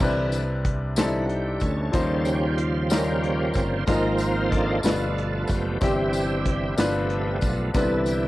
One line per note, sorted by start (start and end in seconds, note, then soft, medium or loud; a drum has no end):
0.00 1.58 C2 medium
0.00 0.94 C3 medium
0.00 0.43 D3 soft
0.00 0.44 E3 soft
0.00 0.63 G3 medium
0.00 0.64 C4 medium
0.00 0.64 D4 medium
0.00 0.64 E4 medium
0.00 0.44 B4 medium
0.00 0.65 B4 medium
0.00 kick medium
0.00 crash medium
0.00 tambourine soft
0.32 closed hi-hat soft
0.32 tambourine medium
0.65 kick medium
0.65 closed hi-hat medium
0.96 1.26 D3 soft
0.96 1.27 E3 soft
0.96 1.60 G3 medium
0.96 1.60 C4 medium
0.96 1.61 D4 medium
0.96 1.05 D#4 soft
0.96 1.61 A4 medium
0.96 1.27 B4 soft
0.96 snare loud
0.96 closed hi-hat medium
0.96 tambourine medium
1.05 1.64 E4 medium
1.22 1.29 F#4 soft
1.29 1.63 G4 medium
1.29 closed hi-hat soft
1.60 1.92 D2 medium
1.60 2.55 C#4 medium
1.60 2.28 A4 medium
1.60 kick medium
1.60 closed hi-hat medium
1.60 tambourine soft
1.92 3.51 D#2 medium
1.92 3.53 C#3 medium
1.92 2.87 D#3 soft
1.92 2.00 F3 medium
1.92 3.54 F3 soft
1.92 3.54 G3 soft
1.92 2.56 C#4 medium
1.92 2.56 D#4 medium
1.92 2.57 F4 medium
1.92 3.84 C5 medium
1.92 2.57 C5 medium
1.92 kick loud
1.92 closed hi-hat medium
1.92 tambourine soft
1.99 2.59 G3 medium
2.25 2.59 G4 medium
2.25 closed hi-hat soft
2.25 tambourine medium
2.57 2.91 F4 medium
2.57 closed hi-hat medium
2.89 3.53 G3 medium
2.89 3.84 A#3 medium
2.89 3.54 C#4 medium
2.89 3.84 C#4 medium
2.89 3.54 D#4 medium
2.89 3.54 F4 medium
2.89 3.59 G4 medium
2.89 3.55 A#4 medium
2.89 snare medium
2.89 closed hi-hat medium
2.89 tambourine medium
3.24 closed hi-hat soft
3.54 3.85 G1 medium
3.54 3.84 C#3 soft
3.54 3.84 F3 soft
3.54 3.85 G3 soft
3.54 3.85 C4 soft
3.54 kick medium
3.54 closed hi-hat soft
3.54 tambourine soft
3.86 4.81 G#1 medium
3.86 4.81 G#2 medium
3.86 4.80 F3 soft
3.86 4.50 G#3 medium
3.86 4.81 A#3 soft
3.86 4.50 C4 medium
3.86 4.81 C4 medium
3.86 4.51 D#4 medium
3.86 4.81 D#4 medium
3.86 4.51 F4 medium
3.86 4.17 A#4 medium
3.86 4.51 A#4 medium
3.86 kick medium
3.86 closed hi-hat medium
3.86 tambourine soft
4.18 4.53 C5 medium
4.18 closed hi-hat soft
4.18 tambourine medium
4.50 5.45 D4 medium
4.50 5.45 F4 medium
4.50 5.42 A4 medium
4.50 kick medium
4.50 closed hi-hat medium
4.83 5.45 G1 medium
4.83 5.77 B2 medium
4.83 5.78 F3 soft
4.83 5.47 G3 medium
4.83 5.78 A3 soft
4.83 5.47 B3 medium
4.83 5.78 B3 medium
4.83 5.47 D4 medium
4.83 5.48 F4 medium
4.83 5.48 B4 medium
4.83 snare loud
4.83 closed hi-hat medium
4.83 tambourine medium
5.18 closed hi-hat soft
5.44 5.50 A4 medium
5.44 tambourine soft
5.48 5.79 F#1 medium
5.48 5.79 G4 medium
5.48 kick medium
5.48 closed hi-hat soft
5.81 6.74 G1 medium
5.81 6.74 G2 soft
5.81 7.39 C3 medium
5.81 6.74 E3 soft
5.81 6.75 G3 soft
5.81 6.44 C4 medium
5.81 6.75 C4 medium
5.81 6.44 E4 medium
5.81 7.38 G4 medium
5.81 6.45 G4 medium
5.81 7.39 E5 medium
5.81 kick loud
5.81 closed hi-hat medium
5.81 tambourine soft
6.13 closed hi-hat soft
6.13 tambourine medium
6.45 kick medium
6.45 closed hi-hat medium
6.77 7.38 G1 medium
6.77 7.71 G2 medium
6.77 7.71 F3 soft
6.77 7.40 G3 medium
6.77 7.71 A3 soft
6.77 7.40 B3 medium
6.77 7.71 B3 soft
6.77 7.41 D4 medium
6.77 7.41 F4 medium
6.77 7.41 B4 medium
6.77 snare medium
6.77 closed hi-hat medium
6.77 tambourine medium
7.10 closed hi-hat soft
7.41 7.72 B1 medium
7.41 kick medium
7.41 closed hi-hat medium
7.41 tambourine soft
7.74 8.28 C2 medium
7.74 8.28 C3 medium
7.74 8.28 D3 soft
7.74 8.28 E3 soft
7.74 8.28 G3 medium
7.74 8.28 B3 medium
7.74 8.28 C4 medium
7.74 7.82 D4 soft
7.74 8.28 E4 medium
7.74 8.06 A4 medium
7.74 8.28 B4 medium
7.74 kick loud
7.74 closed hi-hat medium
7.74 tambourine soft
7.82 8.28 E4 medium
8.06 8.28 G4 medium
8.06 closed hi-hat soft
8.06 tambourine medium